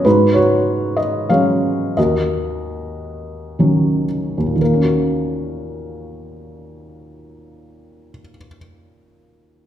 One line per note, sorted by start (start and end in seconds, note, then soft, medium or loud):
0.05 1.93 G#2 soft
0.05 0.94 D#4 soft
0.05 0.34 F#4 soft
0.05 0.36 B4 medium
0.34 1.26 F#4 soft
0.34 0.99 C#5 medium
0.97 1.30 D#5 medium
1.29 1.95 F#3 soft
1.29 1.96 G#3 soft
1.29 1.96 C#4 soft
1.29 1.94 C#5 soft
1.29 1.99 F5 medium
1.97 4.36 D#2 soft
1.97 4.05 F#4 soft
1.97 4.05 A#4 soft
1.97 4.04 D#5 soft
3.59 4.54 D#3 soft
3.59 4.58 F#3 soft
3.59 4.58 C#4 soft
4.38 8.11 D#2 soft
4.46 8.20 A#2 soft
4.56 8.29 D#3 soft
4.62 8.37 A#3 soft
4.62 8.35 A#4 soft
4.73 8.47 C#4 soft
4.82 8.56 F#4 soft